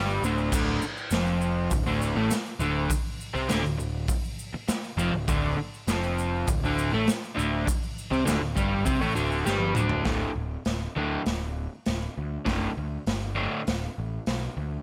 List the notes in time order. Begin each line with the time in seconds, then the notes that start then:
Already playing: G1 G2 G3
0.10 shaker
0.22 D1 D2 D3, shaker
0.38 shaker
0.52 D1 D2 D3, kick, crash, shaker
0.82 muted picked electric bass stroke, muted overdriven electric guitar stroke, shaker
0.97 shaker
1.10 F1 F2 F3, snare, open hi-hat, shaker
1.26 shaker
1.41 shaker
1.71 D1 D2, kick, open hi-hat, shaker
1.86 D1 D2 D3, shaker
2.02 shaker
2.15 A1 A2 A3
2.31 muted picked electric bass stroke, muted overdriven electric guitar stroke, snare, open hi-hat, shaker
2.46 shaker
2.59 D1 D2 D3, shaker
2.90 muted picked electric bass stroke, muted overdriven electric guitar stroke, kick, open hi-hat, shaker
3.21 shaker
3.34 C2 C3 C4, shaker
3.49 D1 D2 D3, snare, open hi-hat, shaker
3.64 D1 D2, shaker
3.78 D1 D2, shaker
4.08 kick, open hi-hat, shaker
4.24 shaker
4.39 shaker
4.54 muted picked electric bass stroke, muted overdriven electric guitar stroke
4.68 muted picked electric bass stroke, muted overdriven electric guitar stroke, snare, open hi-hat, shaker
4.84 shaker
4.97 F1 F2 F3, shaker
5.12 D1 D2
5.28 D1 D2 D3, kick, open hi-hat, shaker
5.58 muted picked electric bass stroke, muted overdriven electric guitar stroke
5.74 shaker
5.87 F1 F2 F3, snare, open hi-hat, shaker
6.03 shaker
6.19 shaker
6.47 D1 D2, kick, open hi-hat, shaker
6.63 D1 D2 D3, shaker
6.79 shaker
6.93 A1 A2 A3
7.07 muted overdriven electric guitar stroke, muted picked electric bass stroke, snare, open hi-hat, shaker
7.24 shaker
7.35 D1 D2 D3, shaker
7.67 muted overdriven electric guitar stroke, muted picked electric bass stroke, kick, open hi-hat, shaker
7.83 shaker
7.98 shaker
8.11 C2 C3 C4, shaker
8.25 D1 D2 D3, snare, open hi-hat, shaker
8.41 D1 D2
8.56 G1 G2 G3, kick, shaker
8.85 C2 C3 C4, kick, open hi-hat, shaker
9.01 A1 A2 A3, shaker
9.15 D1 D2 D3, shaker
9.32 shaker
9.45 G1 G2 G3, snare, shaker
9.60 high tom
9.75 D1 D2 D3, mid tom, shaker
9.89 floor tom
10.05 D1 D2 A2 D3, kick, snare, open hi-hat
10.36 D1
10.65 D1, snare, open hi-hat
10.96 D2 A2 D3
11.26 D1, snare, open hi-hat
11.86 D1, snare, open hi-hat
12.18 D2
12.45 F#1 D2 A2 D3, kick, snare, open hi-hat
12.77 D2
13.07 G1, snare, open hi-hat
13.35 D2 A2 D3
13.67 D1, snare, open hi-hat
13.98 A1
14.26 B1, snare, open hi-hat
14.57 D2